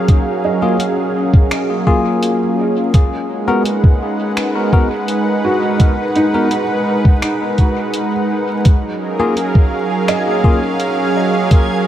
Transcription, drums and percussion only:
0.08 kick loud
0.08 closed hi-hat medium
0.80 closed hi-hat medium
1.34 kick loud
1.51 finger snap loud
1.51 closed hi-hat medium
1.87 kick medium
2.23 closed hi-hat medium
2.94 kick loud
2.94 closed hi-hat medium
3.65 closed hi-hat soft
3.84 kick loud
4.37 finger snap loud
4.37 closed hi-hat medium
4.73 kick loud
5.08 closed hi-hat medium
5.80 kick loud
5.80 closed hi-hat medium
6.16 closed hi-hat soft
6.51 closed hi-hat soft
7.05 kick loud
7.22 finger snap loud
7.22 closed hi-hat medium
7.58 kick medium
7.58 closed hi-hat soft
7.94 closed hi-hat medium
8.65 kick loud
8.65 closed hi-hat medium
9.37 closed hi-hat soft
9.55 kick loud
10.08 finger snap medium
10.08 closed hi-hat soft
10.44 kick loud
10.80 closed hi-hat medium
11.51 kick loud
11.51 closed hi-hat medium

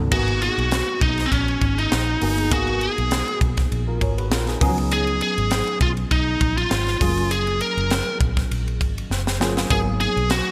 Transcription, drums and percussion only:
0.12 kick loud
0.12 crash loud
0.28 ride soft
0.42 ride medium
0.58 ride soft
0.71 snare loud
0.71 ride medium
1.01 kick loud
1.01 ride medium
1.18 snare soft
1.18 ride soft
1.32 kick medium
1.32 ride medium
1.48 ride soft
1.61 kick medium
1.61 ride medium
1.78 ride soft
1.92 snare loud
1.92 ride medium
2.21 open hi-hat medium
2.21 ride medium
2.38 ride soft
2.51 kick loud
2.51 hi-hat pedal medium
2.51 ride medium
2.67 ride soft
2.81 ride medium
2.98 ride soft
3.11 snare loud
3.11 ride medium
3.28 ride soft
3.41 kick loud
3.41 ride medium
3.57 kick loud
3.57 snare soft
3.57 ride soft
3.72 ride medium
4.01 kick medium
4.01 ride medium
4.18 ride medium
4.31 snare loud
4.31 ride medium
4.47 snare soft
4.47 ride soft
4.61 kick loud
4.61 open hi-hat medium
4.61 ride medium
4.78 ride soft
4.91 hi-hat pedal medium
4.91 ride medium
5.07 ride soft
5.21 ride medium
5.38 ride soft
5.51 snare loud
5.51 ride medium
5.67 ride soft
5.81 kick loud
5.81 ride medium
5.97 ride soft
6.11 kick medium
6.11 ride medium
6.41 kick medium
6.41 ride medium
6.58 ride soft
6.71 snare loud
6.71 ride medium
6.87 snare soft
6.87 ride soft
7.01 kick loud
7.01 open hi-hat medium
7.01 ride medium
7.18 ride soft
7.31 hi-hat pedal medium
7.31 ride medium
7.47 ride soft
7.61 ride medium
7.78 ride soft
7.90 snare loud
7.90 ride medium
8.21 kick loud
8.21 ride medium
8.37 kick medium
8.37 snare soft
8.37 ride soft
8.51 ride medium
8.68 ride soft
8.81 kick medium
8.81 ride medium
8.98 ride soft
9.11 snare medium
9.27 snare medium
9.41 snare medium
9.57 snare medium
9.70 kick loud
9.70 splash medium
10.00 ride medium
10.17 ride soft
10.30 snare loud
10.30 ride medium

